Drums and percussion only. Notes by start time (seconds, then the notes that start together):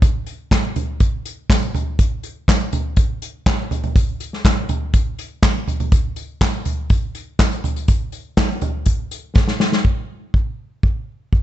0.02 kick, closed hi-hat
0.26 closed hi-hat
0.51 kick, snare, clap, closed hi-hat
0.76 closed hi-hat, floor tom
1.00 kick, closed hi-hat
1.25 closed hi-hat
1.50 kick, snare, clap, closed hi-hat
1.62 closed hi-hat
1.75 closed hi-hat, floor tom
1.99 kick, closed hi-hat
2.23 closed hi-hat
2.48 kick, snare, clap, closed hi-hat
2.72 closed hi-hat, floor tom
2.96 kick, closed hi-hat
3.22 closed hi-hat
3.46 kick, snare, clap, closed hi-hat
3.71 closed hi-hat, floor tom
3.84 closed hi-hat, floor tom
3.96 kick, closed hi-hat
4.20 closed hi-hat
4.33 snare
4.45 kick, snare, clap, closed hi-hat
4.69 closed hi-hat, floor tom
4.94 kick, closed hi-hat
5.19 closed hi-hat
5.42 kick, snare, clap, closed hi-hat
5.68 closed hi-hat, floor tom
5.80 closed hi-hat, floor tom
5.92 kick, closed hi-hat
6.16 closed hi-hat
6.41 kick, snare, clap, closed hi-hat
6.65 closed hi-hat, floor tom
6.90 kick, closed hi-hat
7.15 closed hi-hat
7.39 kick, snare, clap, closed hi-hat
7.52 closed hi-hat
7.64 closed hi-hat, floor tom
7.76 closed hi-hat
7.88 kick, closed hi-hat
8.12 closed hi-hat
8.37 kick, snare, clap, closed hi-hat
8.61 closed hi-hat, floor tom
8.86 kick, closed hi-hat
9.11 closed hi-hat
9.36 kick, snare
9.48 snare
9.60 snare
9.72 snare
9.85 kick
10.34 kick
10.83 kick
11.33 kick